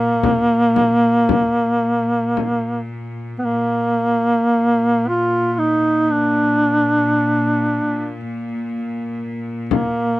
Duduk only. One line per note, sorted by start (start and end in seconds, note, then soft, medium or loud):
0.00 2.93 A#3 medium
3.39 3.46 B3 soft
3.45 5.10 A#3 medium
5.08 5.54 F4 medium
5.54 5.60 F4 medium
5.59 6.13 D#4 medium
6.11 8.17 D4 medium
9.70 10.20 A#3 medium